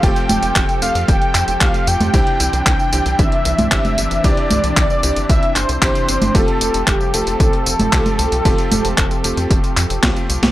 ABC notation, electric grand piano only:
X:1
M:4/4
L:1/8
Q:1/4=114
K:F
V:1 name="Electric grand piano"
[A,CFG]3 [A,CFG]3 [A,CFG]2 | [C,CDEG]3 [C,CDEG]3 [C,CDEG]2 | [C,CDEG]3 [C,CDEG]3 [C,CDEG]2 | [A,CFG]3 [A,CFG]3 [A,CFG]2 |
[A,CFG]3 [A,CFG]3 [A,CFG]2 |]